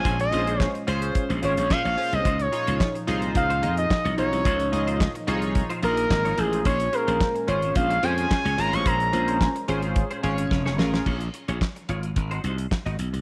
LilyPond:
<<
  \new Staff \with { instrumentName = "Analog synth lead" } { \time 4/4 \key bes \minor \tempo 4 = 109 aes''16 ees''4 r4 r16 des''16 des''16 f''16 f''8 ees''16~ | ees''16 des''4 r8. f''8. ees''8. des''8~ | des''4 r4. bes'4 aes'8 | des''8 bes'4 des''8 f''8 aes''16 aes''8. bes''16 des'''16 |
bes''4. r2 r8 | r1 | }
  \new Staff \with { instrumentName = "Clean electric guitar" } { \time 4/4 \key bes \minor <des' aes' c''>16 r8 <des' aes' c''>16 r8 <des' aes' c''>16 r8 <des' aes' c''>16 <des' aes' c''>16 r8 <des' aes' des''>16 r8 | <ees' f' c''>16 r8 <ees' f' c''>16 r8 <ees' f' c''>16 r8 <ees' f' c''>16 <ees' f' c''>16 r8 <ees' f' des''>16 r8 | <ees' f' c''>16 r8 <ees' f' c''>16 r8 <ees' f' c''>16 r8 <ees' f' c''>16 <ees' f' c''>16 r8 <ees' f' des''>16 r8 | <des' aes' c''>16 r8 <des' aes' c''>16 r8 <des' aes' c''>16 r8 <des' aes' c''>16 <des' aes' c''>16 r8 <des' aes' des''>16 r8 |
<des' aes' c''>16 r8 <des' aes' c''>16 r8 <des' aes' c''>16 r8 <des' aes' c''>16 <des' aes' c''>16 r8 <des' aes' des''>16 r8 | <f' aes' des''>16 r8 <f' aes' des''>16 r8 <f' aes' des''>16 r8 <ees' ges' c''>16 <ees' ges' c''>16 r8 <ees' ges' ees''>16 r8 | }
  \new Staff \with { instrumentName = "Analog polysynth" } { \time 4/4 \key bes \minor <des' f' aes' c''>8 <des' f' aes' c''>8 r8 <des' f' aes' c''>8 r8 <des' f' aes' c''>8 r8 <des' f' aes' c''>8 | r8 <ees' f' aes' des''>8 r8 <ees' f' aes' c''>8 r8 <ees' f' aes' ees''>8 r8 <ees' f' aes' des''>8 | r8 <ees' f' aes' ees''>8 r8 <ees' f' aes' des''>8 r8 <ees' f' aes' ees''>8 r8 <ees' f' aes' c''>8 | r8 <des' f' aes' c''>8 r8 <des' f' aes' c''>8 r8 <des' f' aes' c''>8 r8 <des' f' aes' c''>8 |
r8 <des' f' aes' c''>8 r8 <des' f' aes' c''>8 r8 <des' f' aes' des''>8 r8 <des' f' aes' bes'>8 | r1 | }
  \new Staff \with { instrumentName = "Analog synth pad" } { \clef bass \time 4/4 \key bes \minor << { <aes des'>1 | <f ees'>1~ | <f ees'>1 | <aes des'>1~ |
<aes des'>1 | r1 | } \\ { bes,1~ | bes,1~ | bes,1~ | bes,1~ |
bes,1 | r1 | } >> }
  \new Staff \with { instrumentName = "Slap bass" } { \clef bass \time 4/4 \key bes \minor bes,,8 bes,,8. r16 des,8 r16 bes,,16 aes,,16 bes,,16 bes,16 bes,,16 r16 c,16 | des,8 r16 des,16 r8 c,8 des,8 f,8 r16 c,16 ces,16 c,16 | des,8 des,8. r16 c,8. r16 bes,,8 aes,,8 a,,8 | bes,,8 r16 bes,,16 r8 aes,,8 bes,,8 f,8 r16 des,16 aes,,16 a,,16 |
bes,,8 bes,,8. r16 aes,,8. r16 aes,,8 f,,8 a,,8 | bes,,8 r16 bes,,16 r8 aes,,8 aes,,8 c,8 r16 aes,,16 ces,16 c,16 | }
  \new DrumStaff \with { instrumentName = "Drums" } \drummode { \time 4/4 <hh bd>16 hh16 hh16 hh16 <hc bd sn>16 hh16 hh16 hh16 <hh bd>16 hh16 hh16 hh16 <hc bd sn>16 hh16 hho16 hh16 | <hh bd>16 hh16 hh16 hh16 <hc bd sn>16 hh16 hh16 hh16 <hh bd>16 hh16 hh16 hh16 <hc bd sn>16 hh16 hh16 hh16 | <hh bd>16 hh16 hh16 hh16 <hc bd sn>16 hh16 hh16 hh16 <hh bd>16 hh16 hh16 hh16 <hc bd sn>16 hh16 hh16 hh16 | <hh bd>16 hh16 hh16 hh16 <hc bd sn>16 hh16 hh16 hh16 <hh bd>16 hh16 hh16 hh16 <hc bd sn>16 hh16 hh16 hh16 |
<hh bd>16 hh16 hh16 hh16 <hc bd sn>16 hh16 hh16 hh16 <hh bd>16 hh16 hh16 hh16 <bd sn>16 sn16 sn16 sn16 | <cymc bd>16 hh16 hh16 hh16 <hc bd sn>16 hh16 hh16 hh16 <hh bd>16 hh16 hh16 hh16 <hc bd sn>16 hh16 hh16 hh16 | }
>>